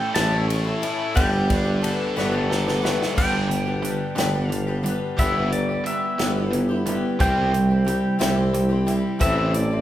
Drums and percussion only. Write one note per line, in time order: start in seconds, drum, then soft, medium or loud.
0.15 snare loud
0.15 ride medium
0.50 ride medium
0.83 ride medium
1.17 kick loud
1.17 ride medium
1.50 kick medium
1.50 ride medium
1.84 ride medium
2.18 snare medium
2.51 snare medium
2.68 snare medium
2.85 snare medium
3.02 snare medium
3.18 kick medium
3.18 crash medium
3.51 closed hi-hat medium
3.85 closed hi-hat medium
4.18 snare loud
4.18 closed hi-hat medium
4.52 closed hi-hat medium
4.86 closed hi-hat medium
5.19 kick medium
5.19 closed hi-hat medium
5.52 closed hi-hat medium
5.86 closed hi-hat medium
6.19 snare medium
6.19 closed hi-hat medium
6.53 closed hi-hat medium
6.86 closed hi-hat medium
7.20 kick loud
7.20 closed hi-hat medium
7.54 closed hi-hat medium
7.88 closed hi-hat medium
8.21 snare loud
8.21 closed hi-hat medium
8.54 closed hi-hat medium
8.88 closed hi-hat medium
9.21 kick medium
9.21 closed hi-hat medium
9.54 closed hi-hat medium